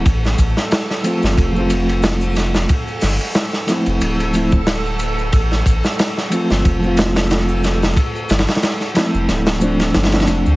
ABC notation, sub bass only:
X:1
M:4/4
L:1/16
Q:"Swing 16ths" 1/4=91
K:Gmix
V:1 name="Sub bass" clef=bass
A,,,2 A,,, z4 G,,, F,,,8 | z2 G,,, z4 F,,, D,,,8 | A,,,2 A,,, z4 G,,, F,,,8 | z2 G,,, z4 F,,, D,,,4 G,,,2 F,,, D,, |]